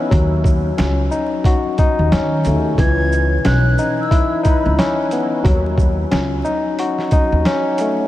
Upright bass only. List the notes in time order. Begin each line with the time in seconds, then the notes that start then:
0.12 D#2
0.79 C#2
1.99 D#2
2.12 D#3
2.46 D#2
2.78 C#2
3.45 B1
4.66 C#2
5.45 D#2
6.12 C#2
7.32 D#2